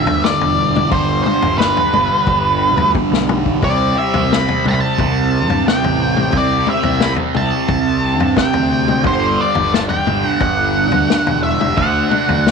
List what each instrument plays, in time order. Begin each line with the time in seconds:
Already playing: distorted electric guitar G2 D3 G3, lead electric guitar E5
0.07 picked electric bass D2, floor tom
0.24 lead electric guitar D5, snare
0.41 picked electric bass E1, floor tom
0.76 mid tom
0.90 picked electric bass G1, distorted electric guitar G2 D3 G3, lead electric guitar C5, kick, floor tom
1.24 lead electric guitar C5, mid tom
1.42 picked electric bass G1, floor tom
1.58 lead electric guitar B4, snare
1.77 floor tom
1.93 picked electric bass G1, mid tom
2.27 picked electric bass G1, kick, floor tom
2.77 picked electric bass D2, floor tom
2.95 kick, high tom
3.11 picked electric bass B1, snare
3.29 mid tom
3.46 kick
3.62 picked electric bass C2, distorted electric guitar C3 G3 C4, lead electric guitar D5, kick, floor tom
3.98 lead electric guitar E5
4.14 picked electric bass C2, floor tom
4.32 lead electric guitar B5, snare
4.48 floor tom
4.65 picked electric bass C2, lead electric guitar A5, mid tom
4.71 lead electric guitar B5
4.81 lead electric guitar A5
4.98 picked electric bass C2, kick, floor tom
5.48 picked electric bass G2, floor tom
5.68 lead electric guitar G5, snare
5.83 picked electric bass A1, floor tom
6.17 mid tom
6.32 picked electric bass C2, distorted electric guitar C3, kick, floor tom
6.37 distorted electric guitar G3 C4, lead electric guitar D5
6.67 lead electric guitar E5, mid tom
6.83 picked electric bass C2, floor tom
7.00 lead electric guitar B5, snare
7.16 floor tom
7.34 picked electric bass C2, lead electric guitar A5, mid tom
7.68 picked electric bass C2, kick, floor tom
8.20 picked electric bass G2, floor tom
8.36 lead electric guitar G5, kick, snare, mid tom
8.53 picked electric bass D2, floor tom
8.88 mid tom
9.04 picked electric bass G1, distorted electric guitar G2 D3 G3, lead electric guitar C5, kick, floor tom
9.41 lead electric guitar D5
9.55 picked electric bass G1, floor tom
9.74 lead electric guitar A5, snare
9.89 lead electric guitar G5, floor tom
10.07 picked electric bass G1, mid tom
10.28 lead electric guitar F#5
10.40 picked electric bass G1, lead electric guitar F#5, kick, floor tom
10.92 picked electric bass D2, floor tom
11.10 snare
11.27 picked electric bass E1, floor tom
11.43 lead electric guitar E5
11.61 mid tom
11.76 picked electric bass D2, distorted electric guitar D3 A3, lead electric guitar F#5, kick, floor tom
11.80 distorted electric guitar D4
12.11 mid tom
12.29 picked electric bass D2, floor tom
12.47 snare